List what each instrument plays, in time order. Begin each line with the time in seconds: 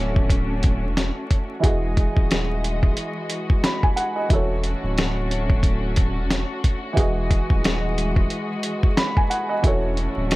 Already playing: sub bass D1, upright piano E3 E4 F#4 A4 C#5, string section A3 C#4 D4 F#4
0.16 kick
0.30 kick, closed hi-hat
0.63 kick, closed hi-hat
0.83 sub bass E1
0.97 snare, closed hi-hat
1.31 kick, closed hi-hat
1.59 upright piano E3 E4 F#4, string section E3 G#3 F#4 D#5
1.64 sub bass E1, upright piano G#4 D#5, kick, closed hi-hat
1.97 kick, closed hi-hat
2.17 sub bass D#1, kick
2.31 snare, closed hi-hat
2.64 closed hi-hat
2.83 kick
2.97 closed hi-hat
3.30 closed hi-hat
3.50 kick
3.64 upright piano B5, snare, closed hi-hat
3.83 upright piano G#5, kick
3.96 upright piano F#5, closed hi-hat
4.16 upright piano D#5
4.28 sub bass E1, upright piano E3 E4 F#4, string section A3 C#4 D4, kick, closed hi-hat
4.33 upright piano A4 C#5
4.64 closed hi-hat
4.83 sub bass D1
4.98 snare, closed hi-hat
5.31 closed hi-hat
5.50 kick
5.63 kick, closed hi-hat
5.96 kick, closed hi-hat
6.17 sub bass E1
6.31 snare, closed hi-hat
6.64 kick, closed hi-hat
6.93 upright piano E3 E4 F#4
6.97 sub bass E1, string section E3 G#3 D#5, upright piano G#4 D#5, kick, closed hi-hat
7.31 kick, closed hi-hat
7.50 sub bass D#1, kick
7.64 snare, closed hi-hat
7.98 closed hi-hat
8.16 kick
8.30 closed hi-hat
8.63 closed hi-hat
8.83 kick
8.97 upright piano B5, snare, closed hi-hat
9.17 upright piano G#5, kick
9.30 upright piano F#5, closed hi-hat
9.49 upright piano D#5
9.62 sub bass E1, upright piano E3 E4 F#4, string section A3 C#4 D4, kick, closed hi-hat
9.66 upright piano A4 C#5
9.97 closed hi-hat
10.17 sub bass D1
10.31 snare, closed hi-hat